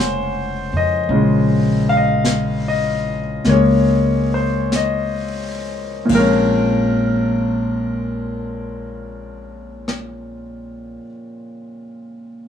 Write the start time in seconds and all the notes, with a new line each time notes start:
Already playing: F1 C#3 F3 G#3 A#3 C#4 C5 C#5 F#5 G#5
0.00 brush sweep, snare, hi-hat pedal
0.73 F2 D#5
1.09 A#1 C#3 F3 G#3, brush sweep
1.89 F5
1.97 D#5
2.25 brush sweep, snare, hi-hat pedal
2.68 D#5
3.45 C#2 G#3 A#3 C#4, brush sweep, snare
3.49 G#4 C#5
4.34 C5
4.72 brush sweep, snare, hi-hat pedal
4.76 D#5
6.05 A#1 A#2 F3, kick, ride
6.12 G#3 C4 A#4
6.17 C#4
9.88 cross-stick